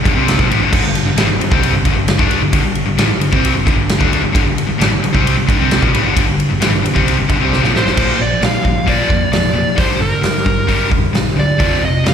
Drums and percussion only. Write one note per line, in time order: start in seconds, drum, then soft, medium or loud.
0.05 kick loud
0.05 ride medium
0.28 snare loud
0.28 ride medium
0.39 kick loud
0.51 ride medium
0.73 kick loud
0.73 crash loud
0.95 snare soft
0.95 ride medium
1.18 snare loud
1.18 ride medium
1.41 ride medium
1.52 kick loud
1.63 ride medium
1.85 kick loud
1.85 ride medium
2.08 snare loud
2.08 ride medium
2.19 kick loud
2.31 ride medium
2.53 kick loud
2.53 ride loud
2.75 ride medium
2.98 snare loud
2.98 ride loud
3.21 ride medium
3.33 kick loud
3.45 ride medium
3.67 kick loud
3.67 ride medium
3.89 snare loud
3.89 ride medium
4.01 kick loud
4.13 ride medium
4.35 kick loud
4.35 ride medium
4.58 ride medium
4.81 snare loud
4.81 ride medium
5.04 ride medium
5.15 kick loud
5.27 ride medium
5.49 kick loud
5.49 ride medium
5.71 snare loud
5.71 ride medium
5.83 kick loud
5.94 ride medium
6.17 kick loud
6.17 ride loud
6.40 ride medium
6.62 snare loud
6.62 ride loud
6.85 ride medium
6.96 kick medium
7.08 ride medium
7.29 kick loud
7.29 ride medium
7.53 snare medium
7.64 snare medium
7.76 snare medium
7.87 snare medium
7.97 kick loud
7.97 crash loud
8.42 snare loud
8.42 open hi-hat medium
8.65 kick medium
8.88 kick medium
8.88 open hi-hat soft
9.10 kick medium
9.33 snare medium
9.33 open hi-hat medium
9.78 kick loud
9.78 open hi-hat medium
10.23 snare loud
10.23 open hi-hat medium
10.46 kick medium
10.69 kick medium
10.69 open hi-hat medium
10.92 kick medium
11.14 snare medium
11.14 open hi-hat medium
11.60 kick loud
11.60 open hi-hat medium
12.06 snare loud
12.06 open hi-hat medium